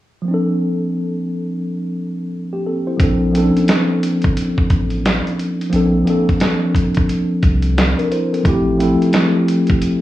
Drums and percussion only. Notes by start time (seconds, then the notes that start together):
3.00 kick, closed hi-hat
3.35 closed hi-hat
3.57 closed hi-hat
3.68 snare, closed hi-hat
4.03 closed hi-hat
4.22 kick, closed hi-hat
4.37 closed hi-hat
4.58 kick
4.70 kick, closed hi-hat
4.90 closed hi-hat
5.05 snare, closed hi-hat
5.27 closed hi-hat
5.39 closed hi-hat
5.61 closed hi-hat
5.73 closed hi-hat
6.07 closed hi-hat
6.29 kick, closed hi-hat
6.40 snare, closed hi-hat
6.74 kick, closed hi-hat
6.94 kick, closed hi-hat
7.09 closed hi-hat
7.43 kick, closed hi-hat
7.63 closed hi-hat
7.78 snare, closed hi-hat
7.99 closed hi-hat
8.12 closed hi-hat
8.34 closed hi-hat
8.45 kick, closed hi-hat
8.80 closed hi-hat
9.02 closed hi-hat
9.13 snare, closed hi-hat
9.48 closed hi-hat
9.67 kick, closed hi-hat
9.82 closed hi-hat